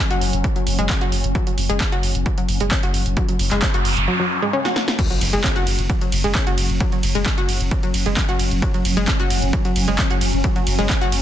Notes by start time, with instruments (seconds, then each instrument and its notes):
Already playing: synth drone F#3 C#4
0.10 sub bass F#1, synth arpeggio sound F#4, closed hi-hat
0.21 sub bass F#1, open hi-hat
0.33 sub bass F#1, closed hi-hat
0.44 synth arpeggio sound F#3, kick, closed hi-hat
0.56 synth arpeggio sound F#3, closed hi-hat
0.67 sub bass F#1, open hi-hat
0.79 sub bass F#1, synth arpeggio sound G#3, closed hi-hat
0.89 synth arpeggio sound C#4, kick, clap, closed hi-hat
1.01 sub bass F#1, synth arpeggio sound F#4, closed hi-hat
1.12 sub bass F#1, open hi-hat
1.24 sub bass F#1, closed hi-hat
1.35 synth arpeggio sound F#3, kick, closed hi-hat
1.47 synth arpeggio sound F#3, closed hi-hat
1.58 sub bass F#1, open hi-hat
1.70 sub bass F#1, synth arpeggio sound G#3, closed hi-hat
1.80 synth arpeggio sound C#4, kick, clap, closed hi-hat
1.92 sub bass F#1, synth arpeggio sound F#4, closed hi-hat
2.03 sub bass F#1, open hi-hat
2.15 sub bass F#1, closed hi-hat
2.26 synth arpeggio sound F#3, kick, closed hi-hat
2.38 synth arpeggio sound F#3, closed hi-hat
2.49 sub bass F#1, open hi-hat
2.60 sub bass F#1, synth arpeggio sound G#3, closed hi-hat
2.71 synth arpeggio sound C#4, kick, clap, closed hi-hat
2.83 sub bass F#1, synth arpeggio sound F#4, closed hi-hat
2.94 sub bass F#1, open hi-hat
3.06 sub bass F#1, closed hi-hat
3.17 synth arpeggio sound F#3, kick, closed hi-hat, noise sweep
3.29 synth arpeggio sound F#3, closed hi-hat
3.39 sub bass F#1, open hi-hat
3.51 sub bass F#1, synth arpeggio sound G#3, clap, closed hi-hat
3.62 synth arpeggio sound C#4, kick, clap, closed hi-hat
3.74 sub bass F#1, synth arpeggio sound F#4, closed hi-hat
3.85 sub bass F#1, open hi-hat
3.97 sub bass F#1, closed hi-hat
4.08 synth arpeggio sound F#3
4.20 synth arpeggio sound F#3
4.42 synth arpeggio sound G#3
4.53 synth arpeggio sound C#4
4.65 synth arpeggio sound F#4, snare
4.76 snare
4.88 snare
4.99 synth drone F#3 C#4, synth arpeggio sound F#3, kick, closed hi-hat, crash, impact
5.10 synth arpeggio sound F#3, closed hi-hat
5.21 sub bass F#1, open hi-hat, ride
5.33 sub bass F#1, synth arpeggio sound G#3, closed hi-hat
5.44 synth arpeggio sound C#4, kick, clap, closed hi-hat
5.56 sub bass F#1, synth arpeggio sound F#4, closed hi-hat
5.67 sub bass F#1, open hi-hat, ride
5.79 sub bass F#1, closed hi-hat
5.90 synth arpeggio sound F#3, kick, closed hi-hat
6.01 synth arpeggio sound F#3, closed hi-hat
6.12 sub bass F#1, open hi-hat, ride
6.24 sub bass F#1, synth arpeggio sound G#3, closed hi-hat
6.35 synth arpeggio sound C#4, kick, clap, closed hi-hat
6.47 sub bass F#1, synth arpeggio sound F#4, closed hi-hat
6.58 sub bass F#1, open hi-hat, ride
6.70 sub bass F#1, closed hi-hat
6.80 synth arpeggio sound F#3, kick, closed hi-hat
6.92 synth arpeggio sound F#3, closed hi-hat
7.03 sub bass F#1, open hi-hat, ride
7.15 sub bass F#1, synth arpeggio sound G#3, closed hi-hat
7.26 synth arpeggio sound C#4, kick, clap, closed hi-hat
7.38 sub bass F#1, synth arpeggio sound F#4, closed hi-hat
7.49 sub bass F#1, open hi-hat, ride
7.61 sub bass F#1, closed hi-hat
7.71 synth arpeggio sound F#3, kick, closed hi-hat
7.83 synth arpeggio sound F#3, closed hi-hat
7.94 sub bass F#1, open hi-hat, ride
8.06 sub bass F#1, synth arpeggio sound G#3, closed hi-hat
8.17 synth arpeggio sound C#4, kick, clap, closed hi-hat
8.29 sub bass F#1, synth arpeggio sound F#4, closed hi-hat
8.39 sub bass F#1, open hi-hat, ride
8.51 sub bass F#1, closed hi-hat
8.62 synth arpeggio sound F#3, kick, closed hi-hat
8.74 synth arpeggio sound F#3, closed hi-hat
8.85 sub bass F#1, open hi-hat, ride
8.97 sub bass F#1, synth arpeggio sound G#3, closed hi-hat
9.08 synth arpeggio sound C#4, kick, clap, closed hi-hat
9.20 sub bass F#1, synth arpeggio sound F#4, closed hi-hat
9.30 sub bass F#1, open hi-hat, ride
9.42 sub bass F#1, closed hi-hat
9.53 synth arpeggio sound F#3, kick, closed hi-hat
9.65 synth arpeggio sound F#3, closed hi-hat
9.76 sub bass F#1, open hi-hat, ride
9.88 sub bass F#1, synth arpeggio sound G#3, closed hi-hat
9.99 synth arpeggio sound C#4, kick, clap, closed hi-hat
10.10 sub bass F#1, synth arpeggio sound F#4, closed hi-hat
10.21 sub bass F#1, open hi-hat, ride
10.33 sub bass F#1, closed hi-hat
10.44 synth arpeggio sound F#3, kick, closed hi-hat
10.56 synth arpeggio sound F#3, closed hi-hat
10.67 sub bass F#1, open hi-hat, ride
10.79 sub bass F#1, synth arpeggio sound G#3, closed hi-hat
10.90 synth arpeggio sound C#4, kick, clap, closed hi-hat
11.01 sub bass F#1, synth arpeggio sound F#4, closed hi-hat
11.12 sub bass F#1, open hi-hat, ride